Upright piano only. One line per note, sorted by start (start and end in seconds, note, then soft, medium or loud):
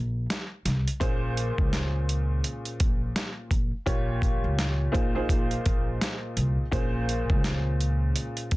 1.00 3.48 A#2 loud
1.00 3.48 A#3 medium
1.00 3.48 C#4 medium
1.00 3.48 G#4 medium
1.00 3.48 C5 loud
3.86 4.90 A#2 medium
3.86 4.90 A#3 medium
3.86 4.91 F4 medium
3.86 4.94 G4 medium
3.86 4.94 C#5 medium
4.92 5.13 A#2 medium
4.92 5.14 A#3 medium
4.92 5.14 D#4 medium
4.92 5.14 F4 medium
4.92 5.14 G#4 medium
4.92 5.14 C5 loud
5.15 6.62 A#2 medium
5.15 6.62 A#3 medium
5.15 6.62 D#4 medium
5.15 6.62 F4 medium
5.15 6.62 G#4 medium
5.15 6.62 C5 loud
6.71 8.57 A#2 loud
6.71 8.57 A#3 medium
6.71 8.57 C#4 medium
6.71 8.57 G#4 medium
6.71 8.57 C5 loud